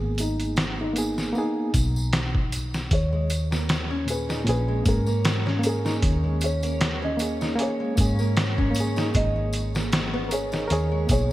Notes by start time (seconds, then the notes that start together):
Already playing: G#1 A#3 B3 G#4
0.18 D#4, closed hi-hat, tambourine
0.40 closed hi-hat, tambourine
0.56 snare, closed hi-hat, tambourine
0.81 D#4
0.93 A#3 B3, closed hi-hat, tambourine
0.98 G#4
1.18 snare, tambourine
1.33 A#3 B3, tambourine
1.37 D#4 G#4
1.74 B1, kick, closed hi-hat, tambourine
1.96 tambourine
2.13 snare, closed hi-hat, tambourine
2.35 kick
2.52 closed hi-hat, tambourine
2.74 snare, tambourine
2.91 D#2 C#4 C#5, kick, closed hi-hat, tambourine
3.13 G#3
3.30 closed hi-hat, tambourine
3.51 A#3, snare, tambourine
3.69 snare, closed hi-hat, tambourine
3.91 C#4
4.06 A#2 C#4, closed hi-hat, tambourine
4.10 G#4 B4
4.29 D#4, snare, tambourine
4.44 A#1 A#2 C#4, closed hi-hat, tambourine
4.49 G#4 B4
4.68 G#3
4.83 G#2 A#3 C#4, kick, closed hi-hat, tambourine
4.88 G#4 A#4
5.06 A#3, tambourine
5.24 snare, closed hi-hat, tambourine
5.46 C#4, snare
5.59 A#3
5.63 C#4 A#4, closed hi-hat, tambourine
5.69 G#4
5.85 D#4, snare, tambourine
6.02 D#2, kick, closed hi-hat, tambourine
6.24 G#3
6.41 C#5, closed hi-hat, tambourine
6.63 A#3, closed hi-hat, tambourine
6.80 snare, closed hi-hat, tambourine
7.02 C#4 D#5
7.17 A#3 C#4, closed hi-hat, tambourine
7.22 G#4
7.41 D#4, snare, tambourine
7.56 A#3 C#4, closed hi-hat, tambourine
7.61 G#4 C#5
7.80 G#3
7.96 G#2 A#3 C#4, kick, closed hi-hat, tambourine
8.01 G#4
8.19 A#3, tambourine
8.36 snare, closed hi-hat, tambourine
8.58 C#4, kick
8.71 A#3
8.75 closed hi-hat, tambourine
8.80 G#4
8.96 D#4, snare, tambourine
9.14 G#1 D#5, kick, closed hi-hat, tambourine
9.36 G#3
9.53 closed hi-hat, tambourine
9.75 A#3, snare, tambourine
9.92 snare, closed hi-hat, tambourine
10.13 B3
10.29 A#4 C#5, closed hi-hat, tambourine
10.34 G#4
10.52 D#4, snare, tambourine
10.68 D#2 A#4 C#5, closed hi-hat, tambourine
10.72 G#4
10.91 G#3
11.07 B1 A#3 B3, kick, closed hi-hat, tambourine
11.11 G#4 C#5